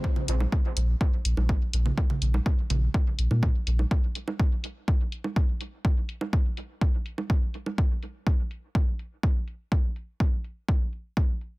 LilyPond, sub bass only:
\new Staff \with { instrumentName = "Sub bass" } { \clef bass \time 4/4 \key des \major \tempo 4 = 124 r8 bes,,16 r8. bes,,16 r8. bes,,16 bes,,16 r8 bes,,16 r16 | r8 bes,,16 r8. bes,,16 r8. bes,,16 bes,16 r8 bes,,16 r16 | r1 | r1 |
r1 | r1 | }